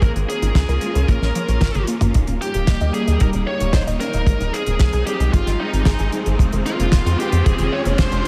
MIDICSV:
0, 0, Header, 1, 7, 480
1, 0, Start_track
1, 0, Tempo, 530973
1, 22, Time_signature, 4, 2, 24, 8
1, 7484, End_track
2, 0, Start_track
2, 0, Title_t, "Lead electric guitar"
2, 0, Program_c, 0, 29
2, 22, Note_on_c, 0, 70, 105
2, 87, Note_off_c, 0, 70, 0
2, 262, Note_on_c, 0, 68, 105
2, 982, Note_on_c, 0, 70, 87
2, 1003, Note_off_c, 0, 68, 0
2, 1666, Note_off_c, 0, 70, 0
2, 2182, Note_on_c, 0, 67, 98
2, 2656, Note_off_c, 0, 67, 0
2, 2659, Note_on_c, 0, 68, 95
2, 2898, Note_on_c, 0, 70, 99
2, 2908, Note_off_c, 0, 68, 0
2, 2964, Note_off_c, 0, 70, 0
2, 3139, Note_on_c, 0, 73, 103
2, 3374, Note_off_c, 0, 73, 0
2, 3378, Note_on_c, 0, 72, 101
2, 3443, Note_off_c, 0, 72, 0
2, 3618, Note_on_c, 0, 70, 102
2, 4098, Note_on_c, 0, 68, 102
2, 4114, Note_off_c, 0, 70, 0
2, 4576, Note_off_c, 0, 68, 0
2, 4579, Note_on_c, 0, 67, 90
2, 4817, Note_off_c, 0, 67, 0
2, 4820, Note_on_c, 0, 65, 88
2, 5059, Note_on_c, 0, 63, 83
2, 5068, Note_off_c, 0, 65, 0
2, 5507, Note_off_c, 0, 63, 0
2, 6021, Note_on_c, 0, 65, 94
2, 6499, Note_off_c, 0, 65, 0
2, 6503, Note_on_c, 0, 67, 96
2, 6738, Note_off_c, 0, 67, 0
2, 6742, Note_on_c, 0, 68, 98
2, 6981, Note_on_c, 0, 73, 110
2, 6989, Note_off_c, 0, 68, 0
2, 7046, Note_off_c, 0, 73, 0
2, 7221, Note_on_c, 0, 72, 107
2, 7484, Note_off_c, 0, 72, 0
2, 7484, End_track
3, 0, Start_track
3, 0, Title_t, "Synth arpeggio sound"
3, 0, Program_c, 1, 84
3, 22, Note_on_c, 1, 58, 82
3, 118, Note_off_c, 1, 58, 0
3, 142, Note_on_c, 1, 56, 74
3, 256, Note_off_c, 1, 56, 0
3, 263, Note_on_c, 1, 61, 76
3, 358, Note_off_c, 1, 61, 0
3, 383, Note_on_c, 1, 63, 73
3, 478, Note_off_c, 1, 63, 0
3, 502, Note_on_c, 1, 70, 98
3, 559, Note_off_c, 1, 70, 0
3, 622, Note_on_c, 1, 70, 103
3, 679, Note_off_c, 1, 70, 0
3, 742, Note_on_c, 1, 56, 72
3, 800, Note_off_c, 1, 56, 0
3, 862, Note_on_c, 1, 70, 75
3, 957, Note_off_c, 1, 70, 0
3, 981, Note_on_c, 1, 58, 82
3, 1077, Note_off_c, 1, 58, 0
3, 1102, Note_on_c, 1, 56, 74
3, 1216, Note_off_c, 1, 56, 0
3, 1222, Note_on_c, 1, 53, 99
3, 1318, Note_off_c, 1, 53, 0
3, 1342, Note_on_c, 1, 53, 79
3, 1456, Note_off_c, 1, 53, 0
3, 1461, Note_on_c, 1, 70, 81
3, 1570, Note_off_c, 1, 70, 0
3, 1581, Note_on_c, 1, 70, 78
3, 1677, Note_off_c, 1, 70, 0
3, 1700, Note_on_c, 1, 58, 102
3, 1758, Note_off_c, 1, 58, 0
3, 1820, Note_on_c, 1, 58, 105
3, 1878, Note_off_c, 1, 58, 0
3, 1940, Note_on_c, 1, 63, 82
3, 2037, Note_off_c, 1, 63, 0
3, 2061, Note_on_c, 1, 61, 75
3, 2175, Note_off_c, 1, 61, 0
3, 2180, Note_on_c, 1, 67, 77
3, 2277, Note_off_c, 1, 67, 0
3, 2301, Note_on_c, 1, 67, 71
3, 2397, Note_off_c, 1, 67, 0
3, 2421, Note_on_c, 1, 75, 94
3, 2479, Note_off_c, 1, 75, 0
3, 2542, Note_on_c, 1, 75, 97
3, 2599, Note_off_c, 1, 75, 0
3, 2662, Note_on_c, 1, 61, 74
3, 2719, Note_off_c, 1, 61, 0
3, 2781, Note_on_c, 1, 75, 74
3, 2877, Note_off_c, 1, 75, 0
3, 2903, Note_on_c, 1, 63, 79
3, 2998, Note_off_c, 1, 63, 0
3, 3023, Note_on_c, 1, 61, 78
3, 3136, Note_off_c, 1, 61, 0
3, 3142, Note_on_c, 1, 67, 76
3, 3238, Note_off_c, 1, 67, 0
3, 3261, Note_on_c, 1, 67, 74
3, 3357, Note_off_c, 1, 67, 0
3, 3381, Note_on_c, 1, 75, 99
3, 3439, Note_off_c, 1, 75, 0
3, 3501, Note_on_c, 1, 75, 97
3, 3559, Note_off_c, 1, 75, 0
3, 3622, Note_on_c, 1, 61, 77
3, 3679, Note_off_c, 1, 61, 0
3, 3741, Note_on_c, 1, 75, 79
3, 3837, Note_off_c, 1, 75, 0
3, 3861, Note_on_c, 1, 56, 86
3, 3957, Note_off_c, 1, 56, 0
3, 3981, Note_on_c, 1, 55, 76
3, 4095, Note_off_c, 1, 55, 0
3, 4100, Note_on_c, 1, 60, 75
3, 4197, Note_off_c, 1, 60, 0
3, 4220, Note_on_c, 1, 60, 76
3, 4317, Note_off_c, 1, 60, 0
3, 4340, Note_on_c, 1, 68, 91
3, 4398, Note_off_c, 1, 68, 0
3, 4461, Note_on_c, 1, 68, 102
3, 4519, Note_off_c, 1, 68, 0
3, 4581, Note_on_c, 1, 55, 75
3, 4639, Note_off_c, 1, 55, 0
3, 4701, Note_on_c, 1, 68, 78
3, 4797, Note_off_c, 1, 68, 0
3, 4821, Note_on_c, 1, 56, 81
3, 4917, Note_off_c, 1, 56, 0
3, 4941, Note_on_c, 1, 55, 77
3, 5056, Note_off_c, 1, 55, 0
3, 5061, Note_on_c, 1, 60, 77
3, 5157, Note_off_c, 1, 60, 0
3, 5181, Note_on_c, 1, 60, 78
3, 5277, Note_off_c, 1, 60, 0
3, 5301, Note_on_c, 1, 68, 102
3, 5359, Note_off_c, 1, 68, 0
3, 5421, Note_on_c, 1, 68, 100
3, 5479, Note_off_c, 1, 68, 0
3, 5542, Note_on_c, 1, 55, 78
3, 5599, Note_off_c, 1, 55, 0
3, 5662, Note_on_c, 1, 68, 77
3, 5757, Note_off_c, 1, 68, 0
3, 5782, Note_on_c, 1, 53, 89
3, 5878, Note_off_c, 1, 53, 0
3, 5902, Note_on_c, 1, 51, 76
3, 6016, Note_off_c, 1, 51, 0
3, 6021, Note_on_c, 1, 56, 80
3, 6117, Note_off_c, 1, 56, 0
3, 6141, Note_on_c, 1, 58, 75
3, 6237, Note_off_c, 1, 58, 0
3, 6262, Note_on_c, 1, 65, 98
3, 6319, Note_off_c, 1, 65, 0
3, 6382, Note_on_c, 1, 65, 100
3, 6439, Note_off_c, 1, 65, 0
3, 6502, Note_on_c, 1, 51, 72
3, 6559, Note_off_c, 1, 51, 0
3, 6622, Note_on_c, 1, 65, 75
3, 6718, Note_off_c, 1, 65, 0
3, 6742, Note_on_c, 1, 53, 80
3, 6838, Note_off_c, 1, 53, 0
3, 6862, Note_on_c, 1, 51, 78
3, 6976, Note_off_c, 1, 51, 0
3, 6981, Note_on_c, 1, 56, 79
3, 7077, Note_off_c, 1, 56, 0
3, 7102, Note_on_c, 1, 58, 78
3, 7198, Note_off_c, 1, 58, 0
3, 7221, Note_on_c, 1, 65, 102
3, 7279, Note_off_c, 1, 65, 0
3, 7340, Note_on_c, 1, 65, 98
3, 7399, Note_off_c, 1, 65, 0
3, 7484, End_track
4, 0, Start_track
4, 0, Title_t, "String machine"
4, 0, Program_c, 2, 50
4, 0, Note_on_c, 2, 58, 81
4, 21, Note_on_c, 2, 61, 76
4, 21, Note_on_c, 2, 65, 86
4, 1906, Note_off_c, 2, 58, 0
4, 1922, Note_off_c, 2, 61, 0
4, 1922, Note_off_c, 2, 65, 0
4, 1939, Note_on_c, 2, 58, 75
4, 1940, Note_on_c, 2, 55, 80
4, 1940, Note_on_c, 2, 63, 93
4, 3841, Note_off_c, 2, 58, 0
4, 3842, Note_off_c, 2, 55, 0
4, 3861, Note_on_c, 2, 56, 84
4, 3861, Note_on_c, 2, 60, 72
4, 5745, Note_off_c, 2, 63, 0
4, 5780, Note_on_c, 2, 65, 91
4, 7484, Note_off_c, 2, 56, 0
4, 7484, Note_off_c, 2, 60, 0
4, 7484, Note_off_c, 2, 65, 0
4, 7484, End_track
5, 0, Start_track
5, 0, Title_t, "Analog synth bass"
5, 0, Program_c, 3, 38
5, 17, Note_on_c, 3, 34, 99
5, 113, Note_off_c, 3, 34, 0
5, 140, Note_on_c, 3, 32, 75
5, 235, Note_off_c, 3, 32, 0
5, 379, Note_on_c, 3, 32, 80
5, 475, Note_off_c, 3, 32, 0
5, 498, Note_on_c, 3, 37, 100
5, 594, Note_off_c, 3, 37, 0
5, 619, Note_on_c, 3, 37, 75
5, 714, Note_off_c, 3, 37, 0
5, 860, Note_on_c, 3, 37, 82
5, 955, Note_off_c, 3, 37, 0
5, 979, Note_on_c, 3, 34, 104
5, 1074, Note_off_c, 3, 34, 0
5, 1100, Note_on_c, 3, 34, 77
5, 1195, Note_off_c, 3, 34, 0
5, 1340, Note_on_c, 3, 34, 82
5, 1435, Note_off_c, 3, 34, 0
5, 1459, Note_on_c, 3, 32, 102
5, 1554, Note_off_c, 3, 32, 0
5, 1580, Note_on_c, 3, 32, 73
5, 1675, Note_off_c, 3, 32, 0
5, 1820, Note_on_c, 3, 32, 81
5, 1915, Note_off_c, 3, 32, 0
5, 1944, Note_on_c, 3, 27, 97
5, 2037, Note_off_c, 3, 27, 0
5, 2060, Note_on_c, 3, 27, 71
5, 2155, Note_off_c, 3, 27, 0
5, 2301, Note_on_c, 3, 27, 76
5, 2395, Note_off_c, 3, 27, 0
5, 2422, Note_on_c, 3, 27, 102
5, 2516, Note_off_c, 3, 27, 0
5, 2540, Note_on_c, 3, 39, 77
5, 2635, Note_off_c, 3, 39, 0
5, 2781, Note_on_c, 3, 39, 80
5, 2875, Note_off_c, 3, 39, 0
5, 2901, Note_on_c, 3, 27, 103
5, 2995, Note_off_c, 3, 27, 0
5, 3022, Note_on_c, 3, 27, 80
5, 3116, Note_off_c, 3, 27, 0
5, 3260, Note_on_c, 3, 27, 82
5, 3355, Note_off_c, 3, 27, 0
5, 3380, Note_on_c, 3, 27, 107
5, 3475, Note_off_c, 3, 27, 0
5, 3501, Note_on_c, 3, 27, 76
5, 3595, Note_off_c, 3, 27, 0
5, 3741, Note_on_c, 3, 27, 80
5, 3835, Note_off_c, 3, 27, 0
5, 3856, Note_on_c, 3, 32, 99
5, 3953, Note_off_c, 3, 32, 0
5, 3981, Note_on_c, 3, 27, 76
5, 4075, Note_off_c, 3, 27, 0
5, 4220, Note_on_c, 3, 27, 80
5, 4315, Note_off_c, 3, 27, 0
5, 4342, Note_on_c, 3, 36, 99
5, 4436, Note_off_c, 3, 36, 0
5, 4460, Note_on_c, 3, 36, 74
5, 4555, Note_off_c, 3, 36, 0
5, 4699, Note_on_c, 3, 36, 83
5, 4794, Note_off_c, 3, 36, 0
5, 4822, Note_on_c, 3, 32, 108
5, 4916, Note_off_c, 3, 32, 0
5, 4940, Note_on_c, 3, 32, 75
5, 5035, Note_off_c, 3, 32, 0
5, 5180, Note_on_c, 3, 32, 80
5, 5275, Note_off_c, 3, 32, 0
5, 5300, Note_on_c, 3, 32, 105
5, 5395, Note_off_c, 3, 32, 0
5, 5420, Note_on_c, 3, 32, 76
5, 5515, Note_off_c, 3, 32, 0
5, 5661, Note_on_c, 3, 32, 81
5, 5755, Note_off_c, 3, 32, 0
5, 5779, Note_on_c, 3, 29, 99
5, 5874, Note_off_c, 3, 29, 0
5, 5902, Note_on_c, 3, 29, 73
5, 5996, Note_off_c, 3, 29, 0
5, 6142, Note_on_c, 3, 29, 82
5, 6236, Note_off_c, 3, 29, 0
5, 6266, Note_on_c, 3, 29, 100
5, 6358, Note_off_c, 3, 29, 0
5, 6381, Note_on_c, 3, 41, 77
5, 6475, Note_off_c, 3, 41, 0
5, 6621, Note_on_c, 3, 41, 82
5, 6715, Note_off_c, 3, 41, 0
5, 6744, Note_on_c, 3, 29, 105
5, 6837, Note_off_c, 3, 29, 0
5, 6861, Note_on_c, 3, 29, 77
5, 6955, Note_off_c, 3, 29, 0
5, 7101, Note_on_c, 3, 29, 85
5, 7195, Note_off_c, 3, 29, 0
5, 7220, Note_on_c, 3, 29, 106
5, 7315, Note_off_c, 3, 29, 0
5, 7341, Note_on_c, 3, 29, 78
5, 7435, Note_off_c, 3, 29, 0
5, 7484, End_track
6, 0, Start_track
6, 0, Title_t, "Riser"
6, 0, Program_c, 4, 103
6, 1941, Note_on_c, 4, 60, 79
6, 7484, Note_off_c, 4, 60, 0
6, 7484, End_track
7, 0, Start_track
7, 0, Title_t, "Drums"
7, 18, Note_on_c, 9, 36, 120
7, 23, Note_on_c, 9, 42, 77
7, 108, Note_off_c, 9, 36, 0
7, 113, Note_off_c, 9, 42, 0
7, 144, Note_on_c, 9, 42, 57
7, 234, Note_off_c, 9, 42, 0
7, 268, Note_on_c, 9, 42, 80
7, 359, Note_off_c, 9, 42, 0
7, 384, Note_on_c, 9, 42, 70
7, 474, Note_off_c, 9, 42, 0
7, 498, Note_on_c, 9, 36, 92
7, 498, Note_on_c, 9, 38, 115
7, 504, Note_on_c, 9, 42, 89
7, 588, Note_off_c, 9, 38, 0
7, 589, Note_off_c, 9, 36, 0
7, 594, Note_off_c, 9, 42, 0
7, 623, Note_on_c, 9, 42, 50
7, 713, Note_off_c, 9, 42, 0
7, 734, Note_on_c, 9, 42, 80
7, 824, Note_off_c, 9, 42, 0
7, 863, Note_on_c, 9, 42, 69
7, 953, Note_off_c, 9, 42, 0
7, 979, Note_on_c, 9, 36, 109
7, 983, Note_on_c, 9, 42, 77
7, 1070, Note_off_c, 9, 36, 0
7, 1074, Note_off_c, 9, 42, 0
7, 1105, Note_on_c, 9, 38, 35
7, 1195, Note_off_c, 9, 38, 0
7, 1223, Note_on_c, 9, 42, 90
7, 1314, Note_off_c, 9, 42, 0
7, 1343, Note_on_c, 9, 42, 71
7, 1433, Note_off_c, 9, 42, 0
7, 1454, Note_on_c, 9, 48, 57
7, 1458, Note_on_c, 9, 42, 80
7, 1459, Note_on_c, 9, 36, 98
7, 1464, Note_on_c, 9, 38, 105
7, 1544, Note_off_c, 9, 48, 0
7, 1548, Note_off_c, 9, 42, 0
7, 1550, Note_off_c, 9, 36, 0
7, 1555, Note_off_c, 9, 38, 0
7, 1578, Note_on_c, 9, 42, 51
7, 1584, Note_on_c, 9, 48, 57
7, 1669, Note_off_c, 9, 42, 0
7, 1675, Note_off_c, 9, 48, 0
7, 1695, Note_on_c, 9, 42, 93
7, 1785, Note_off_c, 9, 42, 0
7, 1816, Note_on_c, 9, 45, 76
7, 1822, Note_on_c, 9, 42, 66
7, 1907, Note_off_c, 9, 45, 0
7, 1913, Note_off_c, 9, 42, 0
7, 1938, Note_on_c, 9, 42, 90
7, 1945, Note_on_c, 9, 36, 115
7, 2029, Note_off_c, 9, 42, 0
7, 2035, Note_off_c, 9, 36, 0
7, 2056, Note_on_c, 9, 42, 60
7, 2146, Note_off_c, 9, 42, 0
7, 2186, Note_on_c, 9, 42, 74
7, 2276, Note_off_c, 9, 42, 0
7, 2297, Note_on_c, 9, 42, 58
7, 2387, Note_off_c, 9, 42, 0
7, 2416, Note_on_c, 9, 38, 109
7, 2417, Note_on_c, 9, 42, 100
7, 2422, Note_on_c, 9, 36, 103
7, 2506, Note_off_c, 9, 38, 0
7, 2507, Note_off_c, 9, 42, 0
7, 2512, Note_off_c, 9, 36, 0
7, 2536, Note_on_c, 9, 42, 48
7, 2627, Note_off_c, 9, 42, 0
7, 2657, Note_on_c, 9, 42, 69
7, 2748, Note_off_c, 9, 42, 0
7, 2781, Note_on_c, 9, 42, 54
7, 2871, Note_off_c, 9, 42, 0
7, 2894, Note_on_c, 9, 42, 92
7, 2902, Note_on_c, 9, 36, 119
7, 2984, Note_off_c, 9, 42, 0
7, 2992, Note_off_c, 9, 36, 0
7, 3011, Note_on_c, 9, 42, 53
7, 3102, Note_off_c, 9, 42, 0
7, 3258, Note_on_c, 9, 42, 62
7, 3348, Note_off_c, 9, 42, 0
7, 3372, Note_on_c, 9, 38, 125
7, 3378, Note_on_c, 9, 42, 89
7, 3380, Note_on_c, 9, 36, 107
7, 3462, Note_off_c, 9, 38, 0
7, 3469, Note_off_c, 9, 42, 0
7, 3471, Note_off_c, 9, 36, 0
7, 3503, Note_on_c, 9, 42, 55
7, 3593, Note_off_c, 9, 42, 0
7, 3620, Note_on_c, 9, 42, 75
7, 3710, Note_off_c, 9, 42, 0
7, 3736, Note_on_c, 9, 42, 51
7, 3827, Note_off_c, 9, 42, 0
7, 3856, Note_on_c, 9, 36, 126
7, 3862, Note_on_c, 9, 42, 95
7, 3946, Note_off_c, 9, 36, 0
7, 3952, Note_off_c, 9, 42, 0
7, 3982, Note_on_c, 9, 42, 52
7, 4072, Note_off_c, 9, 42, 0
7, 4104, Note_on_c, 9, 42, 73
7, 4194, Note_off_c, 9, 42, 0
7, 4217, Note_on_c, 9, 42, 55
7, 4307, Note_off_c, 9, 42, 0
7, 4333, Note_on_c, 9, 38, 103
7, 4336, Note_on_c, 9, 42, 99
7, 4342, Note_on_c, 9, 36, 102
7, 4424, Note_off_c, 9, 38, 0
7, 4427, Note_off_c, 9, 42, 0
7, 4432, Note_off_c, 9, 36, 0
7, 4454, Note_on_c, 9, 42, 51
7, 4545, Note_off_c, 9, 42, 0
7, 4581, Note_on_c, 9, 42, 68
7, 4671, Note_off_c, 9, 42, 0
7, 4703, Note_on_c, 9, 42, 58
7, 4794, Note_off_c, 9, 42, 0
7, 4822, Note_on_c, 9, 36, 118
7, 4824, Note_on_c, 9, 42, 101
7, 4913, Note_off_c, 9, 36, 0
7, 4914, Note_off_c, 9, 42, 0
7, 4942, Note_on_c, 9, 38, 33
7, 4947, Note_on_c, 9, 42, 53
7, 5032, Note_off_c, 9, 38, 0
7, 5037, Note_off_c, 9, 42, 0
7, 5185, Note_on_c, 9, 42, 54
7, 5275, Note_off_c, 9, 42, 0
7, 5292, Note_on_c, 9, 38, 114
7, 5299, Note_on_c, 9, 36, 102
7, 5300, Note_on_c, 9, 42, 97
7, 5382, Note_off_c, 9, 38, 0
7, 5390, Note_off_c, 9, 36, 0
7, 5390, Note_off_c, 9, 42, 0
7, 5414, Note_on_c, 9, 42, 55
7, 5504, Note_off_c, 9, 42, 0
7, 5536, Note_on_c, 9, 42, 78
7, 5627, Note_off_c, 9, 42, 0
7, 5659, Note_on_c, 9, 42, 58
7, 5750, Note_off_c, 9, 42, 0
7, 5779, Note_on_c, 9, 36, 116
7, 5785, Note_on_c, 9, 42, 97
7, 5869, Note_off_c, 9, 36, 0
7, 5875, Note_off_c, 9, 42, 0
7, 5898, Note_on_c, 9, 42, 52
7, 5989, Note_off_c, 9, 42, 0
7, 6021, Note_on_c, 9, 42, 78
7, 6112, Note_off_c, 9, 42, 0
7, 6145, Note_on_c, 9, 42, 58
7, 6235, Note_off_c, 9, 42, 0
7, 6254, Note_on_c, 9, 38, 109
7, 6265, Note_on_c, 9, 42, 100
7, 6266, Note_on_c, 9, 36, 113
7, 6345, Note_off_c, 9, 38, 0
7, 6355, Note_off_c, 9, 42, 0
7, 6356, Note_off_c, 9, 36, 0
7, 6387, Note_on_c, 9, 42, 57
7, 6477, Note_off_c, 9, 42, 0
7, 6507, Note_on_c, 9, 42, 72
7, 6597, Note_off_c, 9, 42, 0
7, 6620, Note_on_c, 9, 42, 59
7, 6711, Note_off_c, 9, 42, 0
7, 6744, Note_on_c, 9, 36, 127
7, 6745, Note_on_c, 9, 42, 92
7, 6835, Note_off_c, 9, 36, 0
7, 6835, Note_off_c, 9, 42, 0
7, 6856, Note_on_c, 9, 42, 54
7, 6947, Note_off_c, 9, 42, 0
7, 7100, Note_on_c, 9, 42, 53
7, 7191, Note_off_c, 9, 42, 0
7, 7216, Note_on_c, 9, 42, 103
7, 7220, Note_on_c, 9, 36, 106
7, 7220, Note_on_c, 9, 38, 117
7, 7306, Note_off_c, 9, 42, 0
7, 7311, Note_off_c, 9, 36, 0
7, 7311, Note_off_c, 9, 38, 0
7, 7339, Note_on_c, 9, 42, 58
7, 7429, Note_off_c, 9, 42, 0
7, 7484, End_track
0, 0, End_of_file